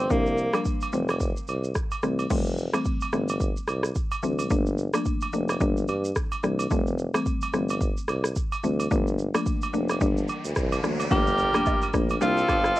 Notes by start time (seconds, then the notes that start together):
Already playing: C4
0.10 C2 F3 G3 A#3 D4, kick, shaker
0.26 shaker
0.38 shaker
0.53 F3 G3 A#3 D4, cross-stick, high agogo, shaker
0.65 kick, shaker
0.81 high agogo, shaker
0.93 F1 E3 G3 A3 C4, shaker
1.08 cross-stick, high agogo, shaker
1.20 kick, shaker
1.37 shaker
1.48 C2, high agogo, shaker
1.64 shaker
1.75 kick, cross-stick, shaker
1.91 high agogo, shaker
2.03 C2 E3 G3 A3 C4, cross-stick, shaker
2.19 high agogo, shaker
2.30 F1 E3 G3 A3 C4, kick, crash, shaker
2.46 shaker
2.58 shaker
2.74 E3 G3 A3 C4, cross-stick, high agogo, shaker
2.85 kick, shaker
3.01 high agogo, shaker
3.13 G1 E3 G3 A3 C4, cross-stick, shaker
3.29 high agogo, shaker
3.40 kick, shaker
3.57 shaker
3.68 C2, cross-stick, high agogo, shaker
3.83 cross-stick, shaker
3.95 kick, shaker
4.12 high agogo, shaker
4.23 D2 E3 G3 A3 C4, shaker
4.39 high agogo, shaker
4.50 G1 F3 A3 A#3 D4, kick, shaker
4.67 shaker
4.78 shaker
4.94 F3 A3 A#3 D4, cross-stick, high agogo, shaker
5.05 kick, shaker
5.21 high agogo, shaker
5.33 F1 F3 A3 A#3 D4, shaker
5.49 cross-stick, high agogo, shaker
5.61 G1 E3 G3 A#3 D4, kick, shaker
5.77 shaker
5.88 G2, high agogo, shaker
6.05 shaker
6.16 kick, cross-stick, shaker
6.32 high agogo, shaker
6.43 C2 E3 G3 A#3 D4, cross-stick, shaker
6.59 high agogo, shaker
6.71 F1 E3 G3 A3 C4, kick, shaker
6.87 shaker
6.98 shaker
7.14 E3 G3 A3 C4, cross-stick, high agogo, shaker
7.26 kick, shaker
7.42 high agogo, shaker
7.53 G1 E3 G3 A3 C4, cross-stick, shaker
7.69 high agogo, shaker
7.81 kick, shaker
7.97 shaker
8.08 C2, cross-stick, high agogo, shaker
8.24 cross-stick, shaker
8.36 kick, shaker
8.52 high agogo, shaker
8.63 D2 E3 G3 A3 C4, shaker
8.80 high agogo, shaker
8.91 G1 F3 A3 A#3 D4, kick, riser, shaker
9.07 shaker
9.19 shaker
9.34 F3 A3 A#3 D4, cross-stick, high agogo, shaker
9.46 kick, shaker
9.62 high agogo, shaker
9.73 F1 F3 A3 A#3 D4, shaker
9.89 cross-stick, high agogo, shaker
10.01 G1 E3 G3 A#3 D4, kick, shaker
10.17 shaker
10.28 high agogo, shaker
10.44 D2, shaker
10.56 C2, kick, cross-stick, shaker
10.72 high agogo, shaker
10.83 D2 E3 G3 A#3 D4, cross-stick, shaker
11.00 high agogo, shaker
11.11 G1 F3 G3 A3 A#3 D4 F4 G4 A#4, kick, impact, shaker
11.27 shaker
11.38 shaker
11.54 F3 A3 A#3 D4, cross-stick, high agogo, shaker
11.66 kick, low woodblock, shaker
11.82 high agogo, shaker
11.94 A#1 F3 A3 A#3 D4, kick, cross-stick, shaker
12.10 high agogo, shaker
12.21 C2 F3 G3 A#3 C4 D4 F4 A4, shaker
12.38 shaker
12.49 G1, kick, cross-stick, high agogo, shaker
12.64 cross-stick, shaker
12.76 low woodblock, shaker